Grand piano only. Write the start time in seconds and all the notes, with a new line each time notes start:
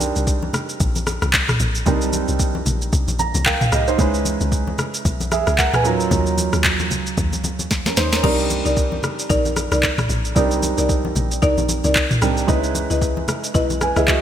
Already playing: G3 C4 D4 D#4 A#4
1.85 G3 C4 D4 D#4 A#4
3.19 A#5
3.46 A#4 F5 G5
3.61 F5
3.72 G4 D#5
3.88 D#4 C5
3.98 G#3 C#4 D#4 E4 B4
5.32 G#4 E5
5.58 A#4 F#5
5.74 B4 G#5
5.84 F#3 C#4 D#4 F4 A#4
7.86 C#4 A#4
7.97 D#4 C5
8.13 C#4 A#4
8.23 G3 C4 D4 D#4 A#4
10.35 G3 C4 D4 D#4 A#4
12.21 G3 C4 D4 D#4 A#4
12.47 G#3 C#4 D#4 E4 B4
13.81 B4 G#5
13.97 G#4 E5
14.08 F#4 D#5